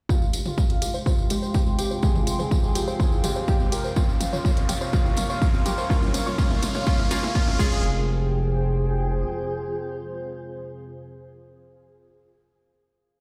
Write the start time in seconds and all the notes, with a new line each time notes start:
0.09 F1 F2 C3 G#3 F4 G4 F5 G5 C6, kick, mid tom, tambourine, riser
0.21 F1, tambourine
0.33 F1 F4, closed hi-hat, tambourine
0.45 F1 F4 C5, mid tom, tambourine
0.50 G5
0.58 F1 F4, kick, mid tom, tambourine
0.70 F2 C4 F4, closed hi-hat, tambourine
0.82 C2 G4, closed hi-hat, tambourine
0.94 F1 C5, tambourine
1.06 F1 F4 C5, kick, mid tom, tambourine
1.18 F1 E4, tambourine
1.30 F1 G#3 F4 G4, closed hi-hat, tambourine
1.42 F1 C5, tambourine
1.54 F1 G#3 F4 G4, kick, mid tom, tambourine
1.66 F1 C4, tambourine
1.79 F1 G4, closed hi-hat, tambourine
1.91 F1 C5, tambourine
2.02 F1 G#3 F4 G4 G#4, kick, mid tom, tambourine
2.15 F1 E4, mid tom, tambourine
2.27 F1 F4, closed hi-hat, tambourine
2.39 F1 G#4 C5, mid tom, tambourine
2.51 F1 F4, kick, mid tom, tambourine
2.63 F2 C4 G#4, tambourine
2.75 C2 G4, closed hi-hat, tambourine
2.87 F1 C5, tambourine
3.00 F1 G#4 C5, kick, mid tom, tambourine
3.12 F1 E4, tambourine
3.24 F1 G#3 F4 G4, closed hi-hat, mid tom, tambourine
3.36 F1 C5, tambourine
3.48 F1 G#3 F4 G4, kick, mid tom, tambourine
3.60 C4, tambourine
3.72 F1 G4 A#4, closed hi-hat, tambourine
3.84 F1 C5, tambourine
3.96 F1 A#3 C#4 F4 A#4 C#5 C#6, kick, mid tom, tambourine
4.09 F1 E4 F5, tambourine
4.21 F1 F4, closed hi-hat, mid tom, tambourine
4.33 F1 F4 C#5, mid tom, tambourine
4.45 F1 F4, kick, mid tom, tambourine
4.57 F2 C4 F4, closed hi-hat, tambourine
4.69 F1 G4, closed hi-hat, mid tom, tambourine
4.81 F1 C5, tambourine
4.93 A#3 C#4 F4, kick, mid tom, tambourine
5.05 F1 E4, tambourine
5.17 F1 F4, closed hi-hat, mid tom, tambourine
5.29 F1 F4 C#5, tambourine
5.42 F1 F4, kick, mid tom, tambourine
5.54 C4 F4, tambourine
5.66 F1 G4, closed hi-hat, mid tom, tambourine
5.78 F1 C5, tambourine
5.90 A#3 C#4 F4, kick, mid tom, tambourine
6.02 E4, mid tom, tambourine
6.14 F4, closed hi-hat, mid tom, tambourine
6.26 F1 F4 C#5, mid tom, tambourine
6.38 A#3 C#4 F4, kick, mid tom, tambourine
6.50 F2 E4, mid tom, tambourine
6.62 F4, closed hi-hat, mid tom, tambourine
6.74 F4 C#5, mid tom, tambourine
6.87 A#3 C#4 F4, kick, mid tom, tambourine
6.98 E4, mid tom, tambourine
7.11 A#3 C#4 F4, closed hi-hat, mid tom, tambourine
7.23 E4, mid tom, tambourine
7.35 A#3 C#4 F4, kick, mid tom, tambourine
7.47 E4, mid tom, tambourine
7.59 F1 F2 C3 G#3 F4 G#4 C5 G5, kick, crash, tambourine
7.67 C5
7.72 tambourine